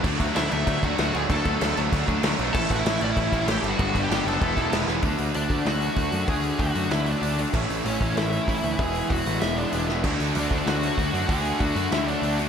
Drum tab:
CC |xxxxxxxx|xxxxxxxx|xxxxxxxx|xxxxxxx-|
HH |--------|--------|--------|--------|
SD |--o---o-|--o---o-|--o---o-|--o---oo|
BD |oo--oo--|oo--oo--|oo--oo--|oo--oo--|

CC |--------|--------|x-------|--------|
HH |oooooooo|oooooooo|-ooooooo|ooooooo-|
SD |----o---|----o---|----o---|----o--o|
BD |o--o--o-|o-o-----|o--o--o-|o-o-----|

CC |x-------|--------|
HH |-ooooooo|oooooooo|
SD |----o---|----o---|
BD |o--o--o-|o-o-----|